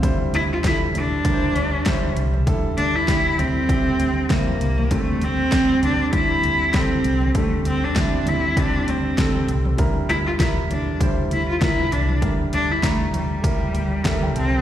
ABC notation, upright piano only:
X:1
M:4/4
L:1/16
Q:"Swing 16ths" 1/4=98
K:Cmix
V:1 name="Upright piano"
[G,Ec]4 [G,EA]4 [G,EBc]4 [G,Ec]4 | [G,EA]4 [G,EG]4 [G,EG]4 [G,Ec]4 | [G,CA]4 [G,Cc]4 [G,CD]4 [G,CA]4 | [G,CA]4 [G,CE]4 [G,CD]4 [G,CA]4 |
[G,EB]4 [G,EB]4 [G,Ec]4 [G,EB]4 | [G,EB]4 [G,Eb]4 [G,EB]4 [G,EAB]4 |]
V:2 name="Upright piano" clef=bass
D,6 z8 z2 | D,6 z8 z2 | D,6 z8 z2 | D,6 z8 z2 |
D,6 z8 z2 | D,6 z6 e g a2 |]